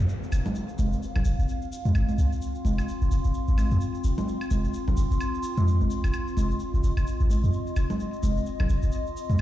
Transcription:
Already playing: C4 F4 F5 A#5, downlifter
0.09 shaker
0.23 shaker
0.32 F1, high woodblock, shaker
0.46 high conga, low conga, shaker
0.55 shaker
0.69 C6, shaker
0.78 F1, high conga, shaker
0.93 shaker
1.03 shaker
1.15 F1, low conga, high woodblock, shaker
1.25 F1, shaker
1.39 F1, shaker
1.49 shaker
1.62 shaker
1.72 shaker
1.85 F2, high conga, shaker
1.95 G1, high woodblock, shaker
2.08 high conga, shaker
2.18 C2, shaker
2.32 shaker
2.42 shaker
2.55 shaker
2.65 F1, high conga, shaker
2.78 high woodblock, shaker
2.88 shaker
3.02 F1, shaker
3.11 F1, shaker
3.24 F1, shaker
3.34 shaker
3.48 G#1, shaker
3.58 high conga, high woodblock, shaker
3.71 F2, shaker
3.81 shaker
3.95 shaker
4.04 F1, shaker
4.18 high conga, low conga, shaker
4.28 shaker
4.41 high woodblock, shaker
4.51 F1, high conga, shaker
4.64 shaker
4.74 shaker
4.87 F1, low conga, shaker
4.97 F1, shaker
5.11 F1, shaker
5.20 high woodblock, shaker
5.34 shaker
5.43 shaker
5.57 F2, high conga, shaker
5.68 shaker
5.81 F1, high conga, shaker
5.90 shaker
6.04 F1, high woodblock, shaker
6.13 high woodblock, shaker
6.26 D#5, shaker
6.37 F1, high conga, shaker
6.51 shaker
6.59 shaker
6.74 F1, shaker
6.83 F1, shaker
6.97 F1, high woodblock, shaker
7.07 shaker
7.20 G#1, shaker
7.30 high conga, shaker
7.43 F2, shaker
7.53 shaker
7.67 shaker
7.76 F1, high woodblock, shaker
7.90 high conga, low conga, shaker
8.00 shaker
8.13 shaker
8.23 F1, high conga, shaker
8.37 shaker
8.46 shaker
8.59 F1, low conga, high woodblock, shaker
8.69 F1, shaker
8.82 F1, shaker
8.92 shaker
9.07 shaker
9.17 shaker
9.30 F2, high conga, shaker
9.38 shaker

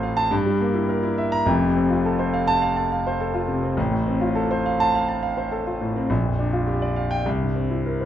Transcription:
Already playing: A1 A2 C4 F4 A4 C5
0.03 F5
0.17 A5
0.31 G2
0.46 G3
0.61 A#3
0.74 E4
0.89 A#4
1.03 E4
1.18 E5
1.32 A#5
1.46 F1 F2
1.61 C3
1.76 C4
1.90 F4
2.05 A4
2.19 C5
2.34 F5
2.47 A5
2.62 F5
2.77 A5
2.92 F5
3.07 C5
3.20 A4
3.34 F4
3.48 C3
3.63 C4
3.77 A1
3.91 A2
4.07 C4
4.21 F4
4.35 A4
4.51 C5
4.66 F5
4.80 A5
4.95 F5
5.08 A5
5.23 F5
5.37 C5
5.51 A4
5.67 F4
5.81 A2
5.96 C4
6.10 A#1
6.24 F2
6.39 D4
6.53 F4
6.67 G4
6.82 D5
6.96 F5
7.11 G5
7.26 C2
7.41 G2
7.56 C4
7.71 E4
7.86 A#4
8.01 C5

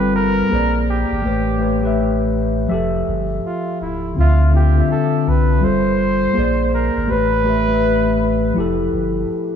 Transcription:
Already playing: G1 G3 C4 F4 A4 B4
0.16 A#4
0.49 A#1 A#3 G#4 C5
0.55 D5
0.90 G4
1.12 G#1
1.22 A1 A3 G4 B4
1.27 C#5
1.58 A3 G4 B4
1.64 C#5
1.81 A3 G4 B4
1.87 E5
2.68 F1 F3 G4 E5
2.74 A4
3.08 G1
3.46 F4
3.81 C#1 E4
4.15 D2 D3 C4 F4
4.19 F4 E5
4.51 D3 C4
4.55 F4 G4 G5
4.75 D3 C4 F4
4.80 E5
4.91 A4
5.27 C2 B4
5.61 G1 G3 F4 A4 C5
5.66 C5
6.33 A#1 A#3 G#4 C5
6.39 D5
6.74 A#4
6.97 G#1
7.07 A1 A3 G4 B4
7.13 C#5
7.44 A3 G4 B4
7.50 E5
7.68 A3 G4 B4
7.74 E5
8.54 F1 F3 E4
8.58 G4 A4
8.93 G1

